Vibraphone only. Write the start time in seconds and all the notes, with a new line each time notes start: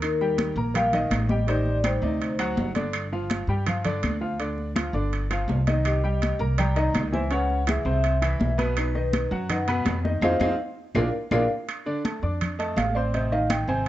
0.02 A#4
0.76 F5
1.29 D#5
1.49 D5
1.85 C5
5.87 D#5
6.59 A#5
7.13 G#5
7.32 F#5
7.68 E5
8.78 B4
9.51 F#5
10.23 C5 D#5 F5
10.42 C5 D#5 F5
10.96 A#4 D5 F5
11.32 A#4 D5 F5